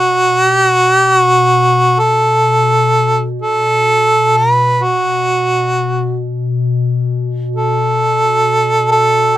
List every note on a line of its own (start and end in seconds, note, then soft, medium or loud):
0.00 2.47 B2 soft
0.00 0.48 F#4 medium
0.48 0.66 G4 medium
0.66 0.96 F#4 medium
0.96 1.14 G4 medium
1.14 2.01 F#4 medium
1.99 3.25 A4 medium
2.48 9.38 B2 soft
3.42 4.38 A4 medium
4.37 4.85 B4 medium
4.84 6.21 F#4 medium
7.56 8.87 A4 medium
8.91 9.38 A4 medium